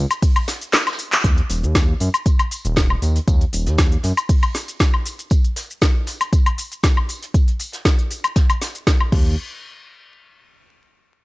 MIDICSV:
0, 0, Header, 1, 3, 480
1, 0, Start_track
1, 0, Key_signature, -6, "minor"
1, 0, Tempo, 508475
1, 1172, Time_signature, 4, 2, 24, 8
1, 10615, End_track
2, 0, Start_track
2, 0, Title_t, "Analog synth bass"
2, 0, Program_c, 0, 38
2, 1172, Note_on_c, 0, 39, 101
2, 1333, Note_off_c, 0, 39, 0
2, 1412, Note_on_c, 0, 27, 93
2, 1540, Note_on_c, 0, 39, 97
2, 1554, Note_off_c, 0, 27, 0
2, 1828, Note_off_c, 0, 39, 0
2, 1892, Note_on_c, 0, 42, 91
2, 1975, Note_off_c, 0, 42, 0
2, 2500, Note_on_c, 0, 27, 102
2, 2789, Note_off_c, 0, 27, 0
2, 2852, Note_on_c, 0, 39, 104
2, 3012, Note_off_c, 0, 39, 0
2, 3092, Note_on_c, 0, 39, 100
2, 3252, Note_off_c, 0, 39, 0
2, 3332, Note_on_c, 0, 27, 92
2, 3460, Note_on_c, 0, 39, 95
2, 3474, Note_off_c, 0, 27, 0
2, 3748, Note_off_c, 0, 39, 0
2, 3812, Note_on_c, 0, 42, 91
2, 3895, Note_off_c, 0, 42, 0
2, 8612, Note_on_c, 0, 39, 97
2, 8835, Note_off_c, 0, 39, 0
2, 10615, End_track
3, 0, Start_track
3, 0, Title_t, "Drums"
3, 100, Note_on_c, 9, 42, 55
3, 100, Note_on_c, 9, 76, 66
3, 106, Note_on_c, 9, 82, 48
3, 195, Note_off_c, 9, 42, 0
3, 195, Note_off_c, 9, 76, 0
3, 200, Note_off_c, 9, 82, 0
3, 212, Note_on_c, 9, 36, 110
3, 212, Note_on_c, 9, 42, 83
3, 212, Note_on_c, 9, 46, 80
3, 218, Note_on_c, 9, 82, 35
3, 306, Note_off_c, 9, 46, 0
3, 307, Note_off_c, 9, 36, 0
3, 307, Note_off_c, 9, 42, 0
3, 312, Note_off_c, 9, 82, 0
3, 340, Note_on_c, 9, 42, 54
3, 340, Note_on_c, 9, 76, 82
3, 434, Note_off_c, 9, 42, 0
3, 434, Note_off_c, 9, 76, 0
3, 450, Note_on_c, 9, 38, 108
3, 452, Note_on_c, 9, 46, 101
3, 453, Note_off_c, 9, 38, 0
3, 453, Note_on_c, 9, 38, 36
3, 456, Note_on_c, 9, 54, 82
3, 458, Note_on_c, 9, 82, 79
3, 547, Note_off_c, 9, 38, 0
3, 547, Note_off_c, 9, 46, 0
3, 551, Note_off_c, 9, 54, 0
3, 552, Note_off_c, 9, 82, 0
3, 580, Note_on_c, 9, 42, 37
3, 586, Note_on_c, 9, 82, 47
3, 674, Note_off_c, 9, 42, 0
3, 680, Note_off_c, 9, 82, 0
3, 687, Note_on_c, 9, 38, 83
3, 692, Note_on_c, 9, 39, 106
3, 692, Note_on_c, 9, 42, 81
3, 693, Note_off_c, 9, 38, 0
3, 693, Note_on_c, 9, 38, 115
3, 697, Note_on_c, 9, 54, 65
3, 698, Note_on_c, 9, 82, 33
3, 751, Note_off_c, 9, 38, 0
3, 751, Note_off_c, 9, 54, 0
3, 751, Note_on_c, 9, 38, 91
3, 751, Note_on_c, 9, 54, 63
3, 787, Note_off_c, 9, 39, 0
3, 787, Note_off_c, 9, 42, 0
3, 792, Note_off_c, 9, 82, 0
3, 819, Note_off_c, 9, 38, 0
3, 819, Note_on_c, 9, 38, 87
3, 820, Note_off_c, 9, 54, 0
3, 820, Note_on_c, 9, 42, 38
3, 820, Note_on_c, 9, 54, 72
3, 820, Note_on_c, 9, 76, 66
3, 873, Note_off_c, 9, 38, 0
3, 873, Note_on_c, 9, 38, 91
3, 876, Note_off_c, 9, 54, 0
3, 876, Note_on_c, 9, 54, 71
3, 915, Note_off_c, 9, 42, 0
3, 915, Note_off_c, 9, 76, 0
3, 932, Note_on_c, 9, 46, 89
3, 937, Note_on_c, 9, 82, 79
3, 968, Note_off_c, 9, 38, 0
3, 971, Note_off_c, 9, 54, 0
3, 1026, Note_off_c, 9, 46, 0
3, 1032, Note_off_c, 9, 82, 0
3, 1055, Note_on_c, 9, 54, 68
3, 1056, Note_on_c, 9, 38, 41
3, 1060, Note_on_c, 9, 39, 78
3, 1060, Note_on_c, 9, 42, 38
3, 1065, Note_on_c, 9, 82, 45
3, 1150, Note_off_c, 9, 38, 0
3, 1150, Note_off_c, 9, 54, 0
3, 1155, Note_off_c, 9, 39, 0
3, 1155, Note_off_c, 9, 42, 0
3, 1160, Note_off_c, 9, 82, 0
3, 1172, Note_on_c, 9, 36, 116
3, 1172, Note_on_c, 9, 42, 79
3, 1172, Note_on_c, 9, 54, 94
3, 1178, Note_on_c, 9, 82, 33
3, 1266, Note_off_c, 9, 36, 0
3, 1267, Note_off_c, 9, 42, 0
3, 1267, Note_off_c, 9, 54, 0
3, 1272, Note_off_c, 9, 82, 0
3, 1300, Note_on_c, 9, 42, 37
3, 1394, Note_off_c, 9, 42, 0
3, 1410, Note_on_c, 9, 38, 52
3, 1412, Note_on_c, 9, 46, 102
3, 1413, Note_on_c, 9, 54, 63
3, 1418, Note_on_c, 9, 82, 76
3, 1505, Note_off_c, 9, 38, 0
3, 1507, Note_off_c, 9, 46, 0
3, 1507, Note_off_c, 9, 54, 0
3, 1512, Note_off_c, 9, 82, 0
3, 1546, Note_on_c, 9, 82, 43
3, 1640, Note_off_c, 9, 82, 0
3, 1652, Note_on_c, 9, 36, 114
3, 1652, Note_on_c, 9, 38, 117
3, 1652, Note_on_c, 9, 42, 82
3, 1652, Note_on_c, 9, 54, 96
3, 1653, Note_off_c, 9, 38, 0
3, 1653, Note_on_c, 9, 38, 123
3, 1658, Note_on_c, 9, 82, 33
3, 1746, Note_off_c, 9, 36, 0
3, 1746, Note_off_c, 9, 54, 0
3, 1747, Note_off_c, 9, 38, 0
3, 1747, Note_off_c, 9, 42, 0
3, 1752, Note_off_c, 9, 82, 0
3, 1889, Note_on_c, 9, 54, 66
3, 1892, Note_on_c, 9, 46, 88
3, 1898, Note_on_c, 9, 82, 75
3, 1983, Note_off_c, 9, 54, 0
3, 1987, Note_off_c, 9, 46, 0
3, 1992, Note_off_c, 9, 82, 0
3, 2020, Note_on_c, 9, 42, 54
3, 2020, Note_on_c, 9, 76, 62
3, 2026, Note_on_c, 9, 82, 43
3, 2115, Note_off_c, 9, 42, 0
3, 2115, Note_off_c, 9, 76, 0
3, 2120, Note_off_c, 9, 82, 0
3, 2130, Note_on_c, 9, 54, 78
3, 2132, Note_on_c, 9, 36, 114
3, 2132, Note_on_c, 9, 42, 82
3, 2138, Note_on_c, 9, 82, 33
3, 2224, Note_off_c, 9, 54, 0
3, 2226, Note_off_c, 9, 36, 0
3, 2227, Note_off_c, 9, 42, 0
3, 2232, Note_off_c, 9, 82, 0
3, 2260, Note_on_c, 9, 42, 55
3, 2260, Note_on_c, 9, 76, 78
3, 2355, Note_off_c, 9, 42, 0
3, 2355, Note_off_c, 9, 76, 0
3, 2373, Note_on_c, 9, 46, 103
3, 2375, Note_on_c, 9, 54, 73
3, 2378, Note_on_c, 9, 82, 76
3, 2467, Note_off_c, 9, 46, 0
3, 2469, Note_off_c, 9, 54, 0
3, 2472, Note_off_c, 9, 82, 0
3, 2500, Note_on_c, 9, 42, 37
3, 2506, Note_on_c, 9, 82, 42
3, 2595, Note_off_c, 9, 42, 0
3, 2600, Note_off_c, 9, 82, 0
3, 2606, Note_on_c, 9, 38, 118
3, 2612, Note_on_c, 9, 36, 117
3, 2612, Note_on_c, 9, 42, 78
3, 2613, Note_off_c, 9, 38, 0
3, 2613, Note_on_c, 9, 38, 121
3, 2616, Note_on_c, 9, 54, 88
3, 2618, Note_on_c, 9, 82, 32
3, 2707, Note_off_c, 9, 36, 0
3, 2707, Note_off_c, 9, 42, 0
3, 2708, Note_off_c, 9, 38, 0
3, 2710, Note_off_c, 9, 54, 0
3, 2712, Note_off_c, 9, 82, 0
3, 2740, Note_on_c, 9, 76, 63
3, 2834, Note_off_c, 9, 76, 0
3, 2850, Note_on_c, 9, 54, 63
3, 2852, Note_on_c, 9, 46, 88
3, 2858, Note_on_c, 9, 82, 77
3, 2944, Note_off_c, 9, 54, 0
3, 2947, Note_off_c, 9, 46, 0
3, 2952, Note_off_c, 9, 82, 0
3, 2979, Note_on_c, 9, 42, 41
3, 2980, Note_off_c, 9, 42, 0
3, 2980, Note_on_c, 9, 42, 37
3, 2986, Note_on_c, 9, 82, 42
3, 3075, Note_off_c, 9, 42, 0
3, 3080, Note_off_c, 9, 82, 0
3, 3092, Note_on_c, 9, 36, 122
3, 3092, Note_on_c, 9, 42, 77
3, 3094, Note_on_c, 9, 54, 86
3, 3097, Note_on_c, 9, 82, 31
3, 3186, Note_off_c, 9, 36, 0
3, 3186, Note_off_c, 9, 42, 0
3, 3189, Note_off_c, 9, 54, 0
3, 3192, Note_off_c, 9, 82, 0
3, 3217, Note_on_c, 9, 42, 42
3, 3220, Note_off_c, 9, 42, 0
3, 3220, Note_on_c, 9, 42, 35
3, 3314, Note_off_c, 9, 42, 0
3, 3332, Note_on_c, 9, 46, 107
3, 3334, Note_on_c, 9, 54, 73
3, 3337, Note_on_c, 9, 82, 72
3, 3426, Note_off_c, 9, 46, 0
3, 3428, Note_off_c, 9, 54, 0
3, 3432, Note_off_c, 9, 82, 0
3, 3460, Note_on_c, 9, 38, 43
3, 3460, Note_on_c, 9, 42, 37
3, 3465, Note_on_c, 9, 82, 43
3, 3554, Note_off_c, 9, 38, 0
3, 3554, Note_off_c, 9, 42, 0
3, 3560, Note_off_c, 9, 82, 0
3, 3566, Note_on_c, 9, 54, 82
3, 3569, Note_on_c, 9, 38, 119
3, 3572, Note_on_c, 9, 36, 116
3, 3572, Note_on_c, 9, 42, 82
3, 3573, Note_off_c, 9, 38, 0
3, 3573, Note_on_c, 9, 38, 122
3, 3577, Note_on_c, 9, 82, 32
3, 3661, Note_off_c, 9, 54, 0
3, 3666, Note_off_c, 9, 36, 0
3, 3666, Note_off_c, 9, 42, 0
3, 3667, Note_off_c, 9, 38, 0
3, 3672, Note_off_c, 9, 82, 0
3, 3700, Note_on_c, 9, 42, 36
3, 3794, Note_off_c, 9, 42, 0
3, 3804, Note_on_c, 9, 38, 45
3, 3812, Note_on_c, 9, 46, 94
3, 3812, Note_on_c, 9, 54, 60
3, 3817, Note_on_c, 9, 82, 73
3, 3899, Note_off_c, 9, 38, 0
3, 3906, Note_off_c, 9, 46, 0
3, 3907, Note_off_c, 9, 54, 0
3, 3912, Note_off_c, 9, 82, 0
3, 3940, Note_on_c, 9, 42, 53
3, 3940, Note_on_c, 9, 76, 63
3, 3945, Note_on_c, 9, 82, 42
3, 4034, Note_off_c, 9, 42, 0
3, 4034, Note_off_c, 9, 76, 0
3, 4040, Note_off_c, 9, 82, 0
3, 4052, Note_on_c, 9, 36, 116
3, 4052, Note_on_c, 9, 42, 80
3, 4052, Note_on_c, 9, 46, 76
3, 4058, Note_on_c, 9, 82, 33
3, 4146, Note_off_c, 9, 36, 0
3, 4147, Note_off_c, 9, 42, 0
3, 4147, Note_off_c, 9, 46, 0
3, 4152, Note_off_c, 9, 82, 0
3, 4180, Note_on_c, 9, 42, 52
3, 4180, Note_on_c, 9, 76, 79
3, 4274, Note_off_c, 9, 42, 0
3, 4274, Note_off_c, 9, 76, 0
3, 4288, Note_on_c, 9, 54, 63
3, 4292, Note_on_c, 9, 46, 105
3, 4293, Note_on_c, 9, 38, 37
3, 4298, Note_on_c, 9, 82, 74
3, 4382, Note_off_c, 9, 54, 0
3, 4387, Note_off_c, 9, 38, 0
3, 4387, Note_off_c, 9, 46, 0
3, 4392, Note_off_c, 9, 82, 0
3, 4420, Note_on_c, 9, 42, 36
3, 4426, Note_on_c, 9, 82, 43
3, 4515, Note_off_c, 9, 42, 0
3, 4520, Note_off_c, 9, 82, 0
3, 4525, Note_on_c, 9, 54, 81
3, 4532, Note_on_c, 9, 36, 118
3, 4532, Note_on_c, 9, 42, 78
3, 4533, Note_on_c, 9, 38, 119
3, 4535, Note_off_c, 9, 38, 0
3, 4535, Note_on_c, 9, 38, 114
3, 4538, Note_on_c, 9, 82, 31
3, 4620, Note_off_c, 9, 54, 0
3, 4626, Note_off_c, 9, 36, 0
3, 4626, Note_off_c, 9, 42, 0
3, 4630, Note_off_c, 9, 38, 0
3, 4632, Note_off_c, 9, 82, 0
3, 4660, Note_on_c, 9, 76, 64
3, 4754, Note_off_c, 9, 76, 0
3, 4772, Note_on_c, 9, 46, 97
3, 4775, Note_on_c, 9, 54, 69
3, 4777, Note_on_c, 9, 82, 77
3, 4866, Note_off_c, 9, 46, 0
3, 4869, Note_off_c, 9, 54, 0
3, 4872, Note_off_c, 9, 82, 0
3, 4900, Note_on_c, 9, 42, 36
3, 4906, Note_on_c, 9, 82, 42
3, 4995, Note_off_c, 9, 42, 0
3, 5000, Note_off_c, 9, 82, 0
3, 5003, Note_on_c, 9, 54, 84
3, 5012, Note_on_c, 9, 36, 122
3, 5012, Note_on_c, 9, 42, 77
3, 5018, Note_on_c, 9, 82, 31
3, 5098, Note_off_c, 9, 54, 0
3, 5106, Note_off_c, 9, 36, 0
3, 5107, Note_off_c, 9, 42, 0
3, 5112, Note_off_c, 9, 82, 0
3, 5140, Note_on_c, 9, 42, 35
3, 5234, Note_off_c, 9, 42, 0
3, 5249, Note_on_c, 9, 38, 51
3, 5252, Note_on_c, 9, 46, 110
3, 5253, Note_on_c, 9, 54, 66
3, 5257, Note_on_c, 9, 82, 72
3, 5344, Note_off_c, 9, 38, 0
3, 5346, Note_off_c, 9, 46, 0
3, 5348, Note_off_c, 9, 54, 0
3, 5352, Note_off_c, 9, 82, 0
3, 5385, Note_on_c, 9, 82, 43
3, 5480, Note_off_c, 9, 82, 0
3, 5489, Note_on_c, 9, 54, 84
3, 5492, Note_on_c, 9, 36, 123
3, 5492, Note_on_c, 9, 38, 116
3, 5492, Note_on_c, 9, 42, 77
3, 5493, Note_off_c, 9, 38, 0
3, 5493, Note_on_c, 9, 38, 119
3, 5498, Note_on_c, 9, 82, 32
3, 5583, Note_off_c, 9, 54, 0
3, 5586, Note_off_c, 9, 36, 0
3, 5587, Note_off_c, 9, 38, 0
3, 5587, Note_off_c, 9, 42, 0
3, 5592, Note_off_c, 9, 82, 0
3, 5727, Note_on_c, 9, 54, 63
3, 5729, Note_on_c, 9, 38, 48
3, 5732, Note_on_c, 9, 46, 92
3, 5738, Note_on_c, 9, 82, 72
3, 5822, Note_off_c, 9, 54, 0
3, 5823, Note_off_c, 9, 38, 0
3, 5826, Note_off_c, 9, 46, 0
3, 5832, Note_off_c, 9, 82, 0
3, 5860, Note_on_c, 9, 42, 51
3, 5860, Note_on_c, 9, 76, 64
3, 5866, Note_on_c, 9, 82, 42
3, 5955, Note_off_c, 9, 42, 0
3, 5955, Note_off_c, 9, 76, 0
3, 5960, Note_off_c, 9, 82, 0
3, 5972, Note_on_c, 9, 36, 117
3, 5973, Note_on_c, 9, 42, 76
3, 5974, Note_on_c, 9, 54, 83
3, 5978, Note_on_c, 9, 82, 31
3, 6067, Note_off_c, 9, 36, 0
3, 6067, Note_off_c, 9, 42, 0
3, 6069, Note_off_c, 9, 54, 0
3, 6072, Note_off_c, 9, 82, 0
3, 6101, Note_on_c, 9, 42, 51
3, 6101, Note_on_c, 9, 76, 81
3, 6195, Note_off_c, 9, 42, 0
3, 6195, Note_off_c, 9, 76, 0
3, 6212, Note_on_c, 9, 46, 112
3, 6213, Note_on_c, 9, 54, 72
3, 6218, Note_on_c, 9, 82, 74
3, 6307, Note_off_c, 9, 46, 0
3, 6307, Note_off_c, 9, 54, 0
3, 6312, Note_off_c, 9, 82, 0
3, 6341, Note_on_c, 9, 42, 34
3, 6346, Note_on_c, 9, 82, 41
3, 6435, Note_off_c, 9, 42, 0
3, 6440, Note_off_c, 9, 82, 0
3, 6448, Note_on_c, 9, 54, 85
3, 6452, Note_on_c, 9, 36, 125
3, 6453, Note_on_c, 9, 38, 117
3, 6453, Note_on_c, 9, 42, 75
3, 6458, Note_on_c, 9, 82, 31
3, 6542, Note_off_c, 9, 54, 0
3, 6546, Note_off_c, 9, 36, 0
3, 6547, Note_off_c, 9, 42, 0
3, 6548, Note_off_c, 9, 38, 0
3, 6552, Note_off_c, 9, 82, 0
3, 6581, Note_on_c, 9, 76, 65
3, 6675, Note_off_c, 9, 76, 0
3, 6693, Note_on_c, 9, 46, 95
3, 6698, Note_on_c, 9, 82, 73
3, 6699, Note_on_c, 9, 54, 73
3, 6787, Note_off_c, 9, 46, 0
3, 6793, Note_off_c, 9, 54, 0
3, 6793, Note_off_c, 9, 82, 0
3, 6820, Note_on_c, 9, 42, 35
3, 6823, Note_off_c, 9, 42, 0
3, 6823, Note_on_c, 9, 42, 46
3, 6826, Note_on_c, 9, 82, 42
3, 6917, Note_off_c, 9, 42, 0
3, 6920, Note_off_c, 9, 82, 0
3, 6932, Note_on_c, 9, 36, 120
3, 6933, Note_on_c, 9, 42, 73
3, 6936, Note_on_c, 9, 54, 83
3, 6938, Note_on_c, 9, 82, 31
3, 7026, Note_off_c, 9, 36, 0
3, 7027, Note_off_c, 9, 42, 0
3, 7030, Note_off_c, 9, 54, 0
3, 7033, Note_off_c, 9, 82, 0
3, 7061, Note_on_c, 9, 42, 35
3, 7065, Note_off_c, 9, 42, 0
3, 7065, Note_on_c, 9, 42, 44
3, 7159, Note_off_c, 9, 42, 0
3, 7168, Note_on_c, 9, 54, 70
3, 7172, Note_on_c, 9, 46, 108
3, 7178, Note_on_c, 9, 82, 75
3, 7263, Note_off_c, 9, 54, 0
3, 7267, Note_off_c, 9, 46, 0
3, 7272, Note_off_c, 9, 82, 0
3, 7295, Note_on_c, 9, 38, 45
3, 7300, Note_on_c, 9, 42, 34
3, 7306, Note_on_c, 9, 82, 42
3, 7390, Note_off_c, 9, 38, 0
3, 7395, Note_off_c, 9, 42, 0
3, 7400, Note_off_c, 9, 82, 0
3, 7411, Note_on_c, 9, 38, 119
3, 7412, Note_on_c, 9, 36, 119
3, 7412, Note_on_c, 9, 42, 75
3, 7412, Note_on_c, 9, 54, 92
3, 7413, Note_off_c, 9, 38, 0
3, 7413, Note_on_c, 9, 38, 116
3, 7418, Note_on_c, 9, 82, 33
3, 7506, Note_off_c, 9, 36, 0
3, 7506, Note_off_c, 9, 54, 0
3, 7507, Note_off_c, 9, 42, 0
3, 7508, Note_off_c, 9, 38, 0
3, 7512, Note_off_c, 9, 82, 0
3, 7540, Note_on_c, 9, 42, 35
3, 7635, Note_off_c, 9, 42, 0
3, 7652, Note_on_c, 9, 46, 93
3, 7653, Note_on_c, 9, 54, 65
3, 7658, Note_on_c, 9, 82, 73
3, 7747, Note_off_c, 9, 46, 0
3, 7747, Note_off_c, 9, 54, 0
3, 7752, Note_off_c, 9, 82, 0
3, 7780, Note_on_c, 9, 42, 50
3, 7780, Note_on_c, 9, 76, 68
3, 7786, Note_on_c, 9, 82, 43
3, 7874, Note_off_c, 9, 42, 0
3, 7874, Note_off_c, 9, 76, 0
3, 7880, Note_off_c, 9, 82, 0
3, 7889, Note_on_c, 9, 38, 105
3, 7890, Note_on_c, 9, 54, 74
3, 7892, Note_on_c, 9, 36, 118
3, 7892, Note_on_c, 9, 42, 77
3, 7898, Note_on_c, 9, 82, 31
3, 7984, Note_off_c, 9, 38, 0
3, 7985, Note_off_c, 9, 54, 0
3, 7986, Note_off_c, 9, 36, 0
3, 7987, Note_off_c, 9, 42, 0
3, 7992, Note_off_c, 9, 82, 0
3, 8020, Note_on_c, 9, 42, 50
3, 8020, Note_on_c, 9, 76, 83
3, 8115, Note_off_c, 9, 42, 0
3, 8115, Note_off_c, 9, 76, 0
3, 8132, Note_on_c, 9, 46, 108
3, 8133, Note_on_c, 9, 38, 36
3, 8133, Note_on_c, 9, 54, 78
3, 8134, Note_off_c, 9, 38, 0
3, 8134, Note_on_c, 9, 38, 112
3, 8138, Note_on_c, 9, 82, 76
3, 8226, Note_off_c, 9, 46, 0
3, 8227, Note_off_c, 9, 54, 0
3, 8228, Note_off_c, 9, 38, 0
3, 8232, Note_off_c, 9, 82, 0
3, 8260, Note_on_c, 9, 42, 35
3, 8266, Note_on_c, 9, 82, 43
3, 8355, Note_off_c, 9, 42, 0
3, 8360, Note_off_c, 9, 82, 0
3, 8371, Note_on_c, 9, 54, 84
3, 8372, Note_on_c, 9, 36, 123
3, 8373, Note_on_c, 9, 38, 110
3, 8373, Note_on_c, 9, 42, 71
3, 8378, Note_on_c, 9, 82, 32
3, 8379, Note_off_c, 9, 38, 0
3, 8379, Note_on_c, 9, 38, 126
3, 8466, Note_off_c, 9, 36, 0
3, 8466, Note_off_c, 9, 54, 0
3, 8467, Note_off_c, 9, 42, 0
3, 8472, Note_off_c, 9, 82, 0
3, 8473, Note_off_c, 9, 38, 0
3, 8500, Note_on_c, 9, 76, 69
3, 8595, Note_off_c, 9, 76, 0
3, 8612, Note_on_c, 9, 36, 113
3, 8612, Note_on_c, 9, 49, 84
3, 8706, Note_off_c, 9, 36, 0
3, 8707, Note_off_c, 9, 49, 0
3, 10615, End_track
0, 0, End_of_file